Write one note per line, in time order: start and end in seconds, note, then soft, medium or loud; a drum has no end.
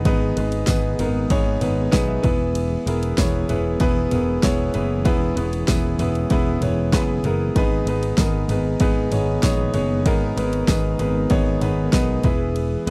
0.00 2.20 D#3 medium
0.00 2.20 G#3 medium
0.00 0.06 B3 loud
0.00 4.70 B3 medium
0.00 0.06 D#4 loud
0.00 0.06 G#4 loud
0.00 10.02 G#4 medium
0.00 0.06 B4 loud
0.05 0.31 G#1 loud
0.05 0.95 G#2 medium
0.05 0.28 B3 loud
0.05 0.28 D#4 loud
0.05 0.29 G#4 loud
0.05 0.29 B4 loud
0.05 kick loud
0.05 ride medium
0.37 0.63 G#1 medium
0.37 0.60 B3 medium
0.37 0.60 D#4 medium
0.37 0.60 G#4 medium
0.37 0.60 B4 medium
0.37 ride medium
0.52 ride soft
0.67 0.93 G#1 medium
0.67 0.91 B3 medium
0.67 0.91 D#4 medium
0.67 0.91 G#4 medium
0.67 0.91 B4 medium
0.67 kick loud
0.67 snare loud
0.67 ride medium
0.67 tambourine medium
0.99 1.25 G#1 loud
0.99 1.22 B3 medium
0.99 1.22 D#4 medium
0.99 1.23 G#4 medium
0.99 1.22 A#4 loud
0.99 floor tom medium
0.99 ride medium
1.30 1.56 G#1 loud
1.30 1.53 B3 loud
1.30 1.53 D#4 loud
1.30 1.54 G#4 medium
1.30 1.54 C#5 loud
1.30 kick loud
1.30 ride medium
1.61 1.87 G#1 medium
1.61 1.84 B3 medium
1.61 1.85 D#4 medium
1.61 1.85 G#4 medium
1.61 1.85 B4 medium
1.61 floor tom medium
1.61 ride medium
1.91 2.18 B1 medium
1.91 2.15 B3 loud
1.91 2.15 D#4 loud
1.91 2.16 G#4 medium
1.91 2.16 B4 loud
1.91 2.07 G#5 medium
1.91 kick loud
1.91 snare loud
1.91 ride medium
1.91 tambourine medium
2.08 2.52 E5 medium
2.23 2.76 E1 loud
2.23 7.51 E3 medium
2.23 3.13 E3 medium
2.23 12.90 G#3 medium
2.23 2.73 B3 loud
2.23 2.74 E4 medium
2.23 2.74 G#4 medium
2.23 2.74 B4 loud
2.23 kick loud
2.23 floor tom medium
2.23 ride medium
2.55 ride medium
2.86 3.12 E1 loud
2.86 3.10 B3 medium
2.86 3.10 E4 medium
2.86 3.10 G#4 medium
2.86 3.10 A#4 medium
2.86 ride medium
3.03 ride soft
3.18 3.43 E1 loud
3.18 3.41 B3 medium
3.18 3.41 E4 medium
3.18 3.41 G#4 medium
3.18 3.41 C#5 loud
3.18 kick loud
3.18 snare loud
3.18 ride medium
3.18 tambourine medium
3.49 3.75 E1 medium
3.49 3.72 B3 medium
3.49 3.73 E4 medium
3.49 3.72 G#4 medium
3.49 3.73 B4 medium
3.49 floor tom medium
3.49 ride medium
3.80 4.06 E1 loud
3.80 4.03 B3 loud
3.80 4.04 E4 loud
3.80 4.03 G#4 loud
3.80 4.04 B4 loud
3.80 kick loud
3.80 ride medium
4.11 4.37 E1 loud
4.11 4.35 B3 medium
4.11 4.35 E4 medium
4.11 4.35 G#4 medium
4.11 4.35 A#4 medium
4.11 floor tom medium
4.11 ride medium
4.43 4.69 E1 medium
4.43 4.66 B3 loud
4.43 4.66 E4 loud
4.43 4.66 G#4 loud
4.43 4.67 C#5 loud
4.43 kick loud
4.43 snare loud
4.43 ride medium
4.43 tambourine medium
4.73 5.06 F#1 loud
4.73 5.64 E3 medium
4.73 4.97 B3 medium
4.73 7.53 C#4 medium
4.73 4.97 E4 medium
4.73 4.97 G#4 medium
4.73 4.97 B4 loud
4.73 floor tom medium
4.73 ride medium
5.05 5.31 E1 loud
5.05 5.28 B3 loud
5.05 5.28 E4 loud
5.05 5.29 G#4 loud
5.05 5.28 B4 loud
5.05 kick loud
5.05 ride medium
5.36 5.63 E1 medium
5.36 5.60 B3 medium
5.36 5.60 E4 medium
5.36 5.60 G#4 medium
5.36 5.60 B4 medium
5.36 ride medium
5.53 ride soft
5.68 5.94 E1 medium
5.68 5.91 B3 medium
5.68 5.92 E4 medium
5.68 5.91 G#4 medium
5.68 5.92 B4 loud
5.68 kick loud
5.68 snare loud
5.68 ride medium
5.68 tambourine medium
5.98 6.24 E1 loud
5.98 6.23 B3 medium
5.98 6.23 E4 medium
5.98 6.23 G#4 medium
5.98 6.23 B4 medium
5.98 floor tom medium
5.98 ride medium
6.15 ride soft
6.30 6.56 E1 loud
6.30 6.54 B3 loud
6.30 6.54 E4 medium
6.30 6.54 G#4 medium
6.30 6.54 B4 loud
6.30 kick loud
6.30 ride medium
6.61 6.93 E1 medium
6.61 6.85 B3 medium
6.61 6.85 E4 medium
6.61 6.85 G#4 medium
6.61 6.86 C#5 medium
6.61 floor tom medium
6.61 ride medium
6.93 7.19 F#1 medium
6.93 7.16 B3 loud
6.93 7.17 E4 medium
6.93 7.17 G#4 medium
6.93 7.17 B4 loud
6.93 kick loud
6.93 snare loud
6.93 ride medium
6.93 tambourine medium
7.23 7.50 F#1 medium
7.23 7.48 B3 medium
7.23 7.48 E4 medium
7.23 7.48 G#4 medium
7.23 7.48 A#4 loud
7.23 floor tom medium
7.23 ride medium
7.55 7.81 G#1 loud
7.55 8.46 G#2 medium
7.55 12.20 D#3 medium
7.55 12.20 B3 medium
7.55 7.79 B3 loud
7.55 7.79 D#4 loud
7.55 7.80 G#4 loud
7.55 7.80 B4 loud
7.55 kick loud
7.55 ride medium
7.85 8.12 G#1 loud
7.85 8.11 B3 medium
7.85 8.11 D#4 medium
7.85 8.11 G#4 medium
7.85 8.11 B4 medium
7.85 ride medium
8.03 ride soft
8.18 8.43 G#1 medium
8.18 8.42 B3 medium
8.18 8.42 D#4 medium
8.18 8.42 G#4 medium
8.18 8.42 A#4 medium
8.18 kick loud
8.18 snare loud
8.18 ride medium
8.18 tambourine medium
8.48 8.74 G#1 loud
8.48 8.73 B3 medium
8.48 8.73 D#4 medium
8.48 8.73 G#4 medium
8.48 8.73 B4 medium
8.48 floor tom medium
8.48 ride medium
8.80 9.06 G#1 loud
8.80 9.04 B3 loud
8.80 9.04 D#4 loud
8.80 9.04 G#4 loud
8.80 9.04 B4 loud
8.80 kick loud
8.80 ride medium
9.11 9.37 G#1 loud
9.11 9.35 B3 medium
9.11 9.35 D#4 medium
9.11 9.35 G#4 medium
9.11 9.35 C#5 medium
9.11 floor tom medium
9.11 ride medium
9.42 9.69 A#1 medium
9.42 9.66 B3 loud
9.42 9.66 D#4 loud
9.42 9.66 G#4 loud
9.42 9.66 C#5 loud
9.42 kick loud
9.42 snare loud
9.42 ride medium
9.42 tambourine medium
9.74 10.05 F#1 medium
9.74 9.97 B3 medium
9.74 9.97 D#4 medium
9.74 9.97 G#4 medium
9.74 9.98 C#5 loud
9.74 floor tom medium
9.74 ride medium
10.05 10.31 G#1 loud
10.05 10.96 G#2 medium
10.05 10.29 B3 loud
10.05 10.29 D#4 loud
10.05 10.29 G#4 loud
10.05 12.22 A#4 medium
10.05 10.29 A#4 loud
10.05 kick loud
10.05 ride medium
10.36 10.62 G#1 medium
10.36 10.60 B3 medium
10.36 10.60 D#4 medium
10.36 10.60 G#4 medium
10.36 10.60 B4 medium
10.36 ride medium
10.53 ride soft
10.68 10.94 G#1 loud
10.68 10.92 B3 medium
10.68 10.92 D#4 medium
10.68 10.92 G#4 medium
10.68 10.92 B4 loud
10.68 kick loud
10.68 snare loud
10.68 ride medium
10.68 tambourine medium
10.99 11.25 G#1 loud
10.99 11.22 B3 medium
10.99 11.23 D#4 medium
10.99 11.23 G#4 medium
10.99 11.23 B4 medium
10.99 floor tom medium
10.99 ride medium
11.30 11.56 G#1 loud
11.30 11.54 B3 loud
11.30 11.54 D#4 loud
11.30 11.54 G#4 loud
11.30 11.54 C#5 loud
11.30 kick loud
11.30 ride medium
11.61 11.87 G#1 medium
11.61 11.85 B3 medium
11.61 11.85 D#4 medium
11.61 11.85 G#4 medium
11.61 11.86 B4 loud
11.61 floor tom medium
11.61 ride medium
11.92 12.19 B1 medium
11.92 12.16 B3 loud
11.92 12.16 D#4 loud
11.92 12.16 G#4 medium
11.92 12.16 B4 loud
11.92 kick loud
11.92 snare loud
11.92 ride medium
11.92 tambourine medium
12.23 12.75 E1 loud
12.23 12.90 E3 medium
12.23 12.75 B3 medium
12.23 12.90 B3 medium
12.23 12.74 E4 medium
12.23 12.75 G#4 medium
12.23 12.90 G#4 medium
12.23 12.74 B4 loud
12.23 kick loud
12.23 floor tom medium
12.23 ride medium
12.56 ride medium
12.87 12.90 E1 loud
12.87 12.90 B3 medium
12.87 12.90 E4 medium